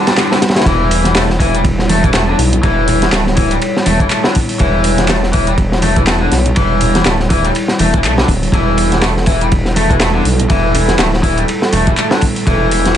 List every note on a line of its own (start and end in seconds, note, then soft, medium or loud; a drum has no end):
0.00 12.97 G3 medium
0.00 12.97 E4 medium
0.00 0.65 G4 loud
0.07 0.16 G3 medium
0.07 snare loud
0.07 closed hi-hat soft
0.07 ride medium
0.18 0.30 D3 medium
0.18 snare loud
0.18 clap loud
0.18 closed hi-hat soft
0.18 ride medium
0.31 0.36 D3 loud
0.31 snare loud
0.31 ride medium
0.42 snare loud
0.42 closed hi-hat medium
0.42 ride medium
0.49 snare loud
0.49 ride medium
0.56 0.61 E3 medium
0.56 snare medium
0.56 closed hi-hat soft
0.56 ride medium
0.61 snare medium
0.61 ride medium
0.66 2.34 E1 loud
0.66 1.15 E3 medium
0.66 8.52 C#5 loud
0.66 kick loud
0.66 closed hi-hat soft
0.66 ride medium
0.91 open hi-hat medium
0.91 ride medium
1.04 snare soft
1.04 closed hi-hat soft
1.04 high conga medium
1.15 1.21 A3 loud
1.15 snare loud
1.15 clap loud
1.15 open hi-hat medium
1.15 ride medium
1.30 snare soft
1.40 1.53 E3 loud
1.40 kick loud
1.40 open hi-hat medium
1.40 ride medium
1.54 1.59 G3 medium
1.54 closed hi-hat soft
1.64 kick loud
1.64 closed hi-hat soft
1.64 ride loud
1.79 snare soft
1.89 2.02 A3 medium
1.89 open hi-hat medium
1.89 ride medium
1.89 high conga medium
2.03 2.08 E3 loud
2.03 kick loud
2.03 closed hi-hat soft
2.14 2.20 A3 loud
2.14 snare loud
2.14 clap loud
2.14 closed hi-hat soft
2.14 ride medium
2.28 2.35 D3 medium
2.39 2.58 B1 loud
2.39 open hi-hat medium
2.53 closed hi-hat soft
2.53 low conga medium
2.63 3.09 E1 medium
2.63 3.11 E3 medium
2.63 kick loud
2.63 closed hi-hat soft
2.63 ride medium
2.88 open hi-hat medium
2.88 ride medium
2.88 low conga medium
3.02 snare medium
3.02 closed hi-hat soft
3.02 high conga medium
3.12 3.58 D1 medium
3.12 3.18 A3 loud
3.12 snare loud
3.12 clap loud
3.12 closed hi-hat soft
3.12 ride medium
3.27 snare soft
3.37 3.50 E3 loud
3.37 kick medium
3.37 open hi-hat medium
3.37 ride medium
3.51 3.55 G3 medium
3.51 closed hi-hat soft
3.51 ride soft
3.62 closed hi-hat soft
3.62 ride medium
3.77 snare medium
3.86 4.06 E1 medium
3.86 3.99 A3 medium
3.86 open hi-hat medium
3.86 ride medium
3.86 high conga loud
3.86 low conga medium
4.00 4.05 E3 loud
4.00 kick loud
4.00 closed hi-hat soft
4.10 4.17 A3 loud
4.10 clap loud
4.10 closed hi-hat soft
4.10 ride loud
4.24 4.32 D3 medium
4.24 snare loud
4.35 kick loud
4.35 open hi-hat medium
4.35 ride medium
4.49 open hi-hat medium
4.59 6.28 E1 loud
4.59 5.08 E3 medium
4.59 kick loud
4.59 closed hi-hat soft
4.59 ride medium
4.84 open hi-hat medium
4.84 ride medium
4.98 snare soft
4.98 closed hi-hat soft
4.98 high conga medium
5.08 5.15 A3 loud
5.08 snare loud
5.08 clap loud
5.08 open hi-hat soft
5.08 ride medium
5.23 snare soft
5.33 5.46 E3 loud
5.33 kick medium
5.33 open hi-hat medium
5.33 ride medium
5.47 5.52 G3 medium
5.47 closed hi-hat soft
5.58 kick loud
5.58 closed hi-hat soft
5.58 ride medium
5.72 snare soft
5.82 5.95 A3 medium
5.82 open hi-hat medium
5.82 ride medium
5.82 high conga loud
5.96 6.01 E3 loud
5.96 kick loud
5.96 closed hi-hat soft
6.07 6.13 A3 loud
6.07 snare loud
6.07 clap loud
6.07 closed hi-hat soft
6.07 ride medium
6.21 6.29 D3 medium
6.32 6.52 B1 medium
6.32 snare soft
6.32 open hi-hat medium
6.32 ride medium
6.46 closed hi-hat soft
6.46 low conga medium
6.56 7.02 E1 medium
6.56 7.05 E3 medium
6.56 kick loud
6.56 closed hi-hat soft
6.56 ride medium
6.81 open hi-hat medium
6.81 ride medium
6.81 low conga medium
6.95 snare medium
6.95 closed hi-hat soft
6.95 high conga medium
7.06 7.51 D1 medium
7.06 7.12 A3 loud
7.06 snare loud
7.06 clap loud
7.06 closed hi-hat soft
7.06 ride medium
7.19 snare soft
7.30 7.43 E3 loud
7.30 kick loud
7.30 open hi-hat medium
7.30 ride medium
7.45 7.49 G3 medium
7.45 closed hi-hat soft
7.45 ride soft
7.55 closed hi-hat soft
7.55 ride medium
7.68 snare medium
7.79 8.06 E1 medium
7.79 7.92 A3 medium
7.79 open hi-hat medium
7.79 ride medium
7.79 high conga loud
7.79 low conga medium
7.94 7.98 E3 loud
7.94 kick loud
7.94 closed hi-hat soft
8.04 8.24 B1 medium
8.04 8.10 A3 loud
8.04 clap loud
8.04 closed hi-hat soft
8.04 ride medium
8.18 8.26 D3 medium
8.18 snare loud
8.28 8.48 D1 medium
8.28 kick loud
8.28 open hi-hat medium
8.28 ride medium
8.43 open hi-hat soft
8.52 10.21 E1 loud
8.52 9.02 E3 medium
8.52 12.97 A4 loud
8.52 kick loud
8.52 closed hi-hat soft
8.52 ride medium
8.78 open hi-hat medium
8.78 ride medium
8.92 snare soft
8.92 closed hi-hat soft
8.92 high conga medium
9.02 9.09 A3 loud
9.02 snare loud
9.02 clap loud
9.02 open hi-hat soft
9.02 ride medium
9.17 snare soft
9.26 9.40 E3 loud
9.26 kick loud
9.26 open hi-hat medium
9.26 ride medium
9.41 9.46 G3 medium
9.41 closed hi-hat soft
9.52 kick loud
9.52 closed hi-hat soft
9.52 ride medium
9.65 snare soft
9.76 9.89 A3 medium
9.76 open hi-hat medium
9.76 ride medium
9.76 high conga medium
9.90 9.95 E3 loud
9.90 kick loud
9.90 closed hi-hat soft
10.00 10.07 A3 loud
10.00 snare loud
10.00 clap loud
10.00 closed hi-hat soft
10.00 ride medium
10.15 10.22 D3 medium
10.25 10.45 B1 loud
10.25 open hi-hat medium
10.39 closed hi-hat soft
10.39 low conga medium
10.50 10.95 E1 loud
10.50 10.98 E3 medium
10.50 kick loud
10.50 closed hi-hat soft
10.50 ride loud
10.75 open hi-hat medium
10.75 ride medium
10.75 low conga loud
10.88 snare medium
10.88 closed hi-hat soft
10.88 high conga medium
10.99 11.45 D1 medium
10.99 11.05 A3 loud
10.99 snare loud
10.99 clap loud
10.99 closed hi-hat soft
10.99 ride loud
11.14 snare soft
11.23 11.36 E3 loud
11.23 kick loud
11.23 open hi-hat medium
11.23 ride medium
11.37 11.42 G3 medium
11.37 closed hi-hat soft
11.37 ride soft
11.48 closed hi-hat soft
11.48 ride medium
11.62 snare medium
11.73 11.93 E1 medium
11.73 11.86 A3 medium
11.73 open hi-hat medium
11.73 ride medium
11.73 high conga medium
11.73 low conga medium
11.86 11.91 E3 loud
11.86 kick loud
11.86 closed hi-hat soft
11.97 12.03 A3 loud
11.97 clap loud
11.97 closed hi-hat soft
11.97 ride medium
12.11 12.19 D3 medium
12.11 snare loud
12.21 kick loud
12.21 open hi-hat medium
12.21 ride medium
12.36 open hi-hat soft
12.47 12.97 E1 loud
12.47 12.95 E3 medium
12.47 kick loud
12.47 closed hi-hat soft
12.47 ride medium
12.71 open hi-hat medium
12.71 ride medium
12.86 snare medium
12.86 closed hi-hat soft
12.86 high conga medium